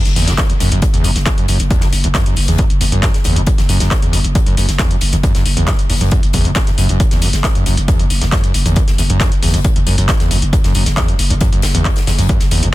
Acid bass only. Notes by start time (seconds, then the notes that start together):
0.16 E2
0.28 F#2
0.50 E2
0.60 F#2
0.72 F#2
0.94 E2
1.04 F#2
1.26 E2
1.38 F#2
1.49 F#2
1.71 E2
1.82 F#2
2.04 E2
2.15 F#2
2.26 F#2
2.48 E2
2.59 F#2
2.81 E2
2.92 F#2
3.25 E2
3.36 F#2
3.58 E2
3.69 F#2
3.80 F#2
4.02 E2
4.13 F#2
4.35 E2
4.46 F#2
4.57 F#2
4.79 E2
4.91 F#2
5.13 E2
5.23 F#2
5.35 F#2
5.57 E2
5.68 F#2
5.90 E2
6.01 F#2
6.34 E2
6.45 F#2
6.67 E2
6.78 F#2
6.90 F#2
7.12 E2
7.22 F#2
7.44 E2
7.56 F#2
7.66 F#2
7.88 E2
8.00 F#2
8.22 E2
8.32 F#2
8.44 F#2
8.66 E2
8.76 F#2
8.99 E2
9.10 F#2
9.43 E2
9.54 F#2
9.76 E2
9.87 F#2
9.98 F#2
10.20 E2
10.31 F#2
10.53 E2
10.64 F#2
10.75 F#2
10.97 E2
11.08 F#2
11.30 E2
11.41 F#2
11.52 F#2
11.74 E2
11.85 F#2
12.07 E2
12.18 F#2
12.29 F#2
12.51 E2
12.63 F#2